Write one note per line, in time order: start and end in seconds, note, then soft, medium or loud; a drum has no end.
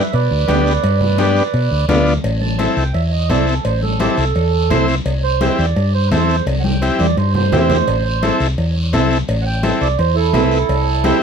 0.00 0.11 B4 medium
0.00 0.15 E5 medium
0.13 0.28 B2 medium
0.13 1.85 B4 medium
0.13 1.85 D5 medium
0.13 cowbell medium
0.13 long guiro medium
0.31 0.45 D2 loud
0.31 high conga soft
0.47 0.77 D2 loud
0.47 0.73 B3 medium
0.47 0.73 D4 medium
0.47 0.73 G4 medium
0.47 cowbell medium
0.47 high conga medium
0.47 low timbale medium
0.47 short guiro medium
0.66 short guiro medium
0.83 1.40 G2 medium
0.83 cowbell loud
0.83 high conga soft
0.83 long guiro medium
1.01 low conga medium
1.18 1.43 B3 medium
1.18 1.43 D4 medium
1.18 1.43 G4 medium
1.18 cowbell medium
1.18 high conga medium
1.18 short guiro medium
1.37 short guiro medium
1.54 1.68 B2 medium
1.54 cowbell medium
1.54 long guiro medium
1.71 1.85 D2 loud
1.71 high conga soft
1.89 2.17 D2 loud
1.89 2.13 B3 medium
1.89 2.14 D4 medium
1.89 2.14 F4 loud
1.89 cowbell medium
1.89 high conga medium
1.89 low conga medium
1.89 low timbale medium
1.89 short guiro medium
2.07 short guiro medium
2.24 2.66 A1 medium
2.24 cowbell loud
2.24 high conga soft
2.24 long guiro medium
2.41 2.58 A5 medium
2.41 high conga medium
2.59 2.84 C4 medium
2.59 2.84 E4 medium
2.59 2.84 A4 medium
2.59 2.76 E5 medium
2.59 cowbell medium
2.59 high conga medium
2.59 short guiro medium
2.76 2.91 C2 medium
2.76 2.94 G5 medium
2.76 short guiro medium
2.93 3.31 E2 medium
2.93 3.11 E5 medium
2.93 cowbell medium
2.93 long guiro medium
3.11 3.29 D#5 medium
3.11 high conga soft
3.29 3.58 C2 medium
3.29 3.54 C4 medium
3.29 3.55 E4 medium
3.29 3.55 A4 medium
3.29 3.47 D5 medium
3.29 cowbell medium
3.29 high conga medium
3.29 low timbale medium
3.29 short guiro medium
3.47 3.64 A4 medium
3.47 short guiro medium
3.65 4.07 A1 medium
3.65 3.82 C5 medium
3.65 cowbell loud
3.65 high conga soft
3.65 long guiro medium
3.83 4.00 A4 medium
3.83 high conga medium
3.99 4.25 C4 medium
3.99 4.25 E4 medium
3.99 4.17 G4 medium
3.99 4.25 A4 medium
3.99 cowbell medium
3.99 high conga medium
3.99 short guiro medium
4.17 4.32 C2 medium
4.17 4.86 A4 medium
4.17 short guiro medium
4.35 4.72 E2 loud
4.35 cowbell medium
4.35 long guiro medium
4.53 high conga soft
4.70 4.99 C2 medium
4.70 4.95 C4 medium
4.70 4.95 E4 medium
4.70 4.96 C5 loud
4.70 cowbell medium
4.70 high conga medium
4.70 low conga medium
4.70 short guiro medium
4.88 short guiro medium
5.05 5.48 C2 medium
5.05 cowbell loud
5.05 high conga soft
5.05 long guiro medium
5.23 5.58 C5 loud
5.41 5.66 C4 medium
5.41 5.66 E4 medium
5.41 5.66 G4 medium
5.41 cowbell medium
5.41 high conga medium
5.41 short guiro medium
5.59 5.73 E2 medium
5.59 5.93 D5 medium
5.59 short guiro medium
5.76 6.13 G2 loud
5.76 cowbell medium
5.76 long guiro medium
5.94 6.10 C5 medium
5.94 high conga soft
6.07 6.09 B4 medium
6.11 6.40 E2 medium
6.11 6.36 C4 medium
6.11 6.36 E4 medium
6.11 6.37 A4 medium
6.11 6.46 C5 medium
6.11 cowbell medium
6.11 high conga medium
6.11 low timbale medium
6.11 short guiro medium
6.29 short guiro medium
6.46 6.89 C2 loud
6.46 cowbell loud
6.46 high conga medium
6.46 long guiro medium
6.60 6.62 F#5 medium
6.64 6.98 G5 medium
6.64 high conga loud
6.81 7.07 C4 medium
6.81 7.07 E4 medium
6.81 7.07 G4 medium
6.81 cowbell medium
6.81 high conga medium
6.81 short guiro medium
6.99 7.14 E2 medium
6.99 7.17 D5 medium
6.99 high conga medium
6.99 short guiro medium
7.17 7.54 G2 loud
7.17 7.33 C5 medium
7.17 cowbell medium
7.17 long guiro medium
7.35 8.37 C5 loud
7.35 low conga medium
7.52 7.81 E2 medium
7.52 7.77 C4 medium
7.52 7.77 E4 medium
7.52 7.77 G4 medium
7.52 cowbell medium
7.52 low conga loud
7.52 low timbale medium
7.52 short guiro medium
7.70 low conga loud
7.70 short guiro medium
7.87 8.30 A1 medium
7.87 cowbell loud
7.87 high conga soft
7.87 long guiro medium
8.22 8.47 C4 medium
8.22 8.48 E4 medium
8.22 8.48 A4 medium
8.22 cowbell medium
8.22 high conga medium
8.22 short guiro medium
8.40 8.54 C2 medium
8.40 short guiro medium
8.58 8.95 E2 medium
8.58 cowbell medium
8.58 long guiro medium
8.75 high conga soft
8.93 9.21 C2 medium
8.93 9.18 C4 medium
8.93 9.18 E4 medium
8.93 9.18 A4 loud
8.93 cowbell medium
8.93 high conga medium
8.93 low timbale medium
8.93 short guiro medium
9.11 short guiro medium
9.28 9.71 A1 medium
9.28 cowbell loud
9.28 high conga soft
9.28 long guiro medium
9.42 9.44 F#5 medium
9.46 9.80 G5 loud
9.63 9.88 C4 medium
9.63 9.88 E4 medium
9.63 9.88 A4 medium
9.63 cowbell medium
9.63 high conga medium
9.63 short guiro medium
9.81 9.95 C2 medium
9.81 9.98 D5 medium
9.81 short guiro medium
9.98 10.36 E2 loud
9.98 10.16 C5 loud
9.98 cowbell medium
9.98 long guiro medium
10.15 11.17 E4 medium
10.15 11.18 A4 loud
10.15 high conga soft
10.33 10.62 C2 medium
10.33 10.58 C4 medium
10.33 10.58 E4 medium
10.33 10.59 B4 medium
10.33 cowbell medium
10.33 high conga medium
10.33 low conga medium
10.33 low timbale medium
10.33 short guiro medium
10.51 short guiro medium
10.69 11.11 C2 loud
10.69 cowbell loud
10.69 high conga soft
10.69 long guiro medium
11.04 11.23 C4 medium
11.04 11.23 E4 medium
11.04 11.23 G4 loud
11.04 cowbell medium
11.04 high conga medium
11.04 short guiro medium